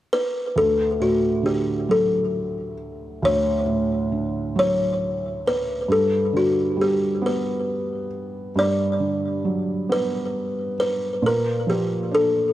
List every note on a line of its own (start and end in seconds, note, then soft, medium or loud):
0.13 0.57 B4 medium
0.56 3.18 D2 medium
0.56 0.77 A4 medium
1.00 2.74 A2 soft
1.00 1.46 F#4 medium
1.43 3.17 D3 soft
1.43 1.91 G4 medium
1.89 3.63 F#3 soft
1.89 2.75 A4 medium
3.22 5.85 D2 medium
3.22 4.58 C#5 medium
3.66 5.40 A2 soft
4.12 5.85 D3 soft
4.56 5.85 F#3 medium
4.56 5.49 C#5 medium
5.47 5.87 B4 medium
5.88 8.51 G2 medium
5.88 6.36 A4 medium
6.33 8.07 D3 soft
6.33 6.56 F#4 medium
6.77 8.51 G3 soft
6.81 7.25 G4 medium
7.22 8.96 B3 soft
7.26 8.09 B4 medium
8.56 11.18 G2 medium
8.56 9.87 D5 medium
9.00 10.74 D3 soft
9.45 11.18 F#3 soft
9.89 11.19 B3 soft
9.89 10.79 B4 medium
10.80 11.20 B4 medium
11.22 12.53 A#2 medium
11.26 11.45 A#4 medium
11.67 12.53 F3 soft
11.67 12.14 G4 medium
12.11 12.53 D4 soft
12.11 12.34 A4 medium